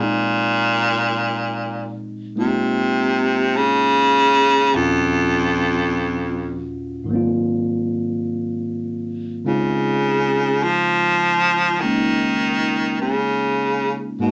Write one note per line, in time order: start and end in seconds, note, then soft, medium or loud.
0.00 1.98 A#2 medium
0.00 4.71 A#2 soft
0.00 4.72 F3 soft
0.00 2.34 G#3 soft
0.00 4.74 C4 soft
0.00 2.37 D#4 soft
2.35 3.58 C3 medium
2.35 4.73 G#3 soft
2.35 4.74 A#3 soft
2.35 4.74 D#4 soft
2.35 4.74 F4 soft
3.56 4.76 C#3 medium
4.74 7.10 D#2 soft
4.74 6.71 F2 medium
4.74 7.10 A#2 soft
4.74 7.11 C#4 soft
4.74 7.10 F4 soft
4.74 7.10 F#4 soft
7.04 9.43 G#2 soft
7.04 9.44 D#3 soft
7.09 9.45 F#3 soft
7.09 9.46 A#3 soft
7.13 9.46 C4 soft
7.13 9.45 F4 medium
9.45 14.19 C#3 soft
9.45 10.65 C#3 medium
9.45 11.81 G#3 soft
9.45 14.20 C4 soft
9.45 11.83 D#4 soft
9.45 14.20 F4 soft
10.63 11.82 F3 medium
11.81 13.00 D#3 medium
11.81 14.19 G#3 soft
11.81 14.20 A#3 soft
11.81 14.20 C#4 soft
11.81 14.20 D#4 soft
13.01 13.98 C#3 medium
14.19 14.31 G#2 soft
14.19 14.31 B2 medium
14.19 14.31 G#3 soft
14.19 14.31 A#3 soft
14.19 14.31 D#4 soft
14.24 14.31 F#4 medium